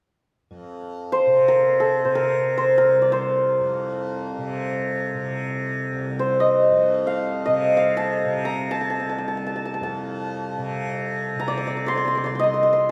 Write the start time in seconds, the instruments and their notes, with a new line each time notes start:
0.51 tanpura F2
1.12 santur C5
1.26 tanpura C3
1.48 santur A#4
1.80 santur A4
2.05 tanpura C3, santur C5
2.15 santur A#4
2.58 santur C5
2.78 tanpura C2, santur A#4
3.02 santur D5
3.12 santur C5
3.61 tanpura F2
4.38 tanpura C3
5.15 tanpura C3
5.92 tanpura C2
6.19 santur C5
6.40 santur D#5
6.71 tanpura F2
7.07 santur F5
7.46 tanpura C3, santur D#5
7.77 santur F5
7.97 santur A5
8.25 tanpura C3
8.45 santur A#5
8.71 santur A5
8.81 santur A5
8.90 santur A5
9.00 tanpura C2, santur A5
9.09 santur A5
9.18 santur A5
9.28 santur A5
9.37 santur A5
9.47 santur A5
9.56 santur A5
9.65 santur A5
9.74 santur A5
9.81 tanpura F2, santur A5
10.58 tanpura C3
11.36 tanpura C3, santur A#5
11.48 santur D5
11.57 santur D5
11.67 santur D5
11.77 santur D5
11.86 santur D5 C6
11.95 santur D5 C6
12.05 santur D5 C6
12.12 tanpura C2, santur D5
12.17 santur C6
12.24 santur D5 C6
12.35 santur C6
12.39 santur D#5
12.44 santur C6
12.54 santur C6
12.63 santur C6
12.73 santur C6